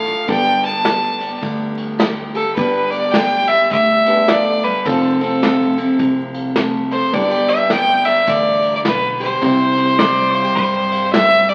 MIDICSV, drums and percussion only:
0, 0, Header, 1, 2, 480
1, 0, Start_track
1, 0, Tempo, 570885
1, 240, Time_signature, 4, 2, 24, 8
1, 9706, End_track
2, 0, Start_track
2, 0, Title_t, "Drums"
2, 46, Note_on_c, 9, 51, 58
2, 130, Note_off_c, 9, 51, 0
2, 234, Note_on_c, 9, 51, 89
2, 239, Note_on_c, 9, 36, 126
2, 318, Note_off_c, 9, 51, 0
2, 323, Note_off_c, 9, 36, 0
2, 529, Note_on_c, 9, 51, 60
2, 613, Note_off_c, 9, 51, 0
2, 714, Note_on_c, 9, 38, 117
2, 714, Note_on_c, 9, 51, 74
2, 798, Note_off_c, 9, 38, 0
2, 798, Note_off_c, 9, 51, 0
2, 1014, Note_on_c, 9, 51, 63
2, 1098, Note_off_c, 9, 51, 0
2, 1197, Note_on_c, 9, 51, 82
2, 1199, Note_on_c, 9, 36, 112
2, 1281, Note_off_c, 9, 51, 0
2, 1283, Note_off_c, 9, 36, 0
2, 1493, Note_on_c, 9, 51, 64
2, 1577, Note_off_c, 9, 51, 0
2, 1678, Note_on_c, 9, 38, 109
2, 1678, Note_on_c, 9, 51, 86
2, 1762, Note_off_c, 9, 38, 0
2, 1762, Note_off_c, 9, 51, 0
2, 1973, Note_on_c, 9, 51, 65
2, 2057, Note_off_c, 9, 51, 0
2, 2162, Note_on_c, 9, 36, 127
2, 2165, Note_on_c, 9, 51, 97
2, 2246, Note_off_c, 9, 36, 0
2, 2250, Note_off_c, 9, 51, 0
2, 2454, Note_on_c, 9, 51, 67
2, 2539, Note_off_c, 9, 51, 0
2, 2636, Note_on_c, 9, 38, 107
2, 2636, Note_on_c, 9, 51, 88
2, 2720, Note_off_c, 9, 38, 0
2, 2720, Note_off_c, 9, 51, 0
2, 2932, Note_on_c, 9, 51, 72
2, 3016, Note_off_c, 9, 51, 0
2, 3120, Note_on_c, 9, 51, 88
2, 3121, Note_on_c, 9, 36, 112
2, 3204, Note_off_c, 9, 51, 0
2, 3206, Note_off_c, 9, 36, 0
2, 3413, Note_on_c, 9, 51, 73
2, 3497, Note_off_c, 9, 51, 0
2, 3600, Note_on_c, 9, 38, 121
2, 3600, Note_on_c, 9, 51, 83
2, 3684, Note_off_c, 9, 38, 0
2, 3684, Note_off_c, 9, 51, 0
2, 3900, Note_on_c, 9, 51, 63
2, 3984, Note_off_c, 9, 51, 0
2, 4083, Note_on_c, 9, 36, 123
2, 4085, Note_on_c, 9, 51, 95
2, 4167, Note_off_c, 9, 36, 0
2, 4169, Note_off_c, 9, 51, 0
2, 4378, Note_on_c, 9, 51, 61
2, 4462, Note_off_c, 9, 51, 0
2, 4564, Note_on_c, 9, 38, 102
2, 4564, Note_on_c, 9, 51, 82
2, 4648, Note_off_c, 9, 38, 0
2, 4648, Note_off_c, 9, 51, 0
2, 4858, Note_on_c, 9, 51, 62
2, 4942, Note_off_c, 9, 51, 0
2, 5039, Note_on_c, 9, 36, 117
2, 5040, Note_on_c, 9, 51, 80
2, 5123, Note_off_c, 9, 36, 0
2, 5124, Note_off_c, 9, 51, 0
2, 5332, Note_on_c, 9, 51, 64
2, 5416, Note_off_c, 9, 51, 0
2, 5513, Note_on_c, 9, 38, 113
2, 5513, Note_on_c, 9, 51, 79
2, 5597, Note_off_c, 9, 38, 0
2, 5597, Note_off_c, 9, 51, 0
2, 5811, Note_on_c, 9, 51, 61
2, 5895, Note_off_c, 9, 51, 0
2, 5997, Note_on_c, 9, 51, 93
2, 5999, Note_on_c, 9, 36, 123
2, 6081, Note_off_c, 9, 51, 0
2, 6083, Note_off_c, 9, 36, 0
2, 6289, Note_on_c, 9, 51, 67
2, 6373, Note_off_c, 9, 51, 0
2, 6474, Note_on_c, 9, 38, 108
2, 6474, Note_on_c, 9, 51, 85
2, 6558, Note_off_c, 9, 38, 0
2, 6558, Note_off_c, 9, 51, 0
2, 6765, Note_on_c, 9, 51, 68
2, 6849, Note_off_c, 9, 51, 0
2, 6953, Note_on_c, 9, 51, 88
2, 6959, Note_on_c, 9, 36, 116
2, 7037, Note_off_c, 9, 51, 0
2, 7043, Note_off_c, 9, 36, 0
2, 7249, Note_on_c, 9, 51, 69
2, 7334, Note_off_c, 9, 51, 0
2, 7440, Note_on_c, 9, 38, 111
2, 7440, Note_on_c, 9, 51, 90
2, 7524, Note_off_c, 9, 38, 0
2, 7524, Note_off_c, 9, 51, 0
2, 7737, Note_on_c, 9, 51, 66
2, 7821, Note_off_c, 9, 51, 0
2, 7922, Note_on_c, 9, 36, 124
2, 7923, Note_on_c, 9, 51, 95
2, 8006, Note_off_c, 9, 36, 0
2, 8007, Note_off_c, 9, 51, 0
2, 8215, Note_on_c, 9, 51, 64
2, 8299, Note_off_c, 9, 51, 0
2, 8399, Note_on_c, 9, 38, 113
2, 8399, Note_on_c, 9, 51, 78
2, 8483, Note_off_c, 9, 38, 0
2, 8483, Note_off_c, 9, 51, 0
2, 8693, Note_on_c, 9, 51, 59
2, 8777, Note_off_c, 9, 51, 0
2, 8877, Note_on_c, 9, 51, 84
2, 8882, Note_on_c, 9, 36, 111
2, 8961, Note_off_c, 9, 51, 0
2, 8966, Note_off_c, 9, 36, 0
2, 9179, Note_on_c, 9, 51, 62
2, 9263, Note_off_c, 9, 51, 0
2, 9363, Note_on_c, 9, 38, 112
2, 9363, Note_on_c, 9, 51, 83
2, 9447, Note_off_c, 9, 38, 0
2, 9447, Note_off_c, 9, 51, 0
2, 9657, Note_on_c, 9, 51, 61
2, 9706, Note_off_c, 9, 51, 0
2, 9706, End_track
0, 0, End_of_file